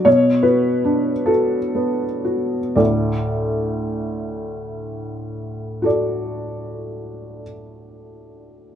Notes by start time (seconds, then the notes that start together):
0.05 B2 C#5
0.43 F#4 B4
0.85 D4
1.26 F#4 A4
1.75 B3
2.25 F#4
2.76 D2 A2 D5
5.82 F#4 A4 D5